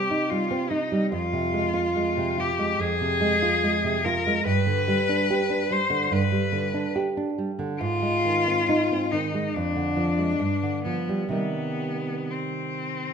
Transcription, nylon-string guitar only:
0.00 1.08 C3 soft
0.00 0.22 G3 soft
0.11 0.43 D#4 soft
0.31 0.63 G3 soft
0.51 0.70 C4 soft
0.71 1.03 D#4 soft
0.92 1.12 G3 soft
1.12 2.76 F2 medium
1.33 1.66 C3 soft
1.53 1.87 G#3 soft
1.74 2.08 F4 soft
1.96 2.29 G#3 soft
2.17 2.50 C3 soft
2.38 2.71 F4 soft
2.59 2.92 G#3 soft
2.79 4.42 F2 soft
3.01 3.34 C3 soft
3.21 3.54 G#3 soft
3.42 3.75 F4 soft
3.63 3.96 G#3 soft
3.84 4.17 C3 soft
4.06 4.38 F4 soft
4.27 4.47 G#3 soft
4.45 6.06 G2 medium
4.66 5.00 D3 soft
4.88 5.21 G3 soft
5.09 5.42 D4 soft
5.30 5.62 G4 soft
5.50 5.82 D4 soft
5.71 6.03 G3 soft
5.90 6.23 D3 soft
6.11 7.76 G2 medium
6.32 6.65 G3 soft
6.52 6.86 D3 soft
6.74 7.07 D4 soft
6.96 7.29 G4 soft
7.17 7.50 D4 soft
7.38 7.72 G3 soft
7.59 7.80 D3 soft
7.81 9.50 G#2 medium
8.02 8.37 G#3 soft
8.25 8.59 D#3 soft
8.47 8.81 C4 soft
8.69 9.03 D#4 soft
8.91 9.25 C4 soft
9.13 9.46 D#3 soft
9.35 9.55 G#3 soft
9.56 10.39 F2 soft
9.76 10.10 D3 soft
9.97 10.31 F3 soft
10.19 10.40 G#3 soft
10.40 11.30 G2 soft
10.63 11.00 D3 soft
10.86 11.24 F3 soft
11.09 11.31 G3 soft
11.29 13.13 C3 soft
11.29 13.13 D#3 soft
11.29 13.13 G3 soft

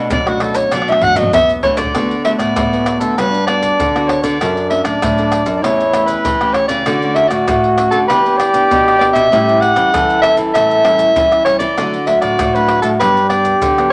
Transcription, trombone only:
1.96 3.14 B3 medium
3.19 4.37 D4 loud
4.41 5.65 D4 medium
5.64 6.60 E4 loud
6.86 8.10 F#4 loud
8.08 9.31 G4 loud
9.32 9.95 G4 loud
9.94 11.47 A4 loud
11.77 13.02 F#4 loud
13.01 13.93 G4 loud

